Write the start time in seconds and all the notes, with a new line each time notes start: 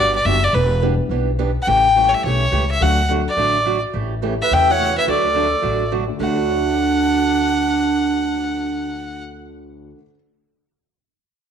Already playing: G1 D3 F#3 B3 D4 G4
0.00 D5
0.15 D5
0.25 F#1 D3 F#3 G3 B3 D4 F#4 G4 E5
0.44 D5
0.53 E1 E3 B3 D4 G4 B4
0.82 E3 G3 B3 D4 E4 G4
1.09 B1 E3 B3 D4 G4
1.39 E3 B3 D4 G4
1.62 F#5
1.67 A1 C#3 E3 A3 C#4 G4 G5
1.96 C#3 E3 G3 A3 C#4 E4 G4
2.09 C#5
2.14 E5
2.24 B1 C#3 E3 A3 C#4 G4 C#5
2.52 C#2 C#3 E3 A3 C#4 G4
2.71 E5
2.81 D2 D3 F#3 A3 D4 F#4 A4 F#5
3.09 D3 F#3 A3 D4 F#4 A4
3.28 D5
3.37 A1 D3 F#3 A3 D4 F#4
3.65 D3 F#3 A3 D4 F#4
3.93 A1 C#3 E3 A3 C#4 G4
4.22 C#3 E3 A3 C#4 E4 G4
4.42 B4 E5
4.51 E2 C#3 E3 A3 C#4 G4 E5 G5
4.68 A3 C#4 E4 F#4 C#5 F#5
4.79 C#3 E3 A3 C#4 G4
4.98 B4 E5
5.06 D2 D3 F#3 A3 D4 F#4 A4 D5
5.12 A4
5.34 D3 F#3 A3 D4 F#4 A4
5.62 A1 D3 F#3 A3 D4 F#4
5.92 D3 F#3 A3 D4 F#4
6.08 D2
6.14 D3
6.20 D2 D3 F#3 A3 D4 F#4 F#5
6.26 F#4
6.32 A4
6.48 C#5
6.56 E5
6.64 A5
6.73 D6
6.83 F#6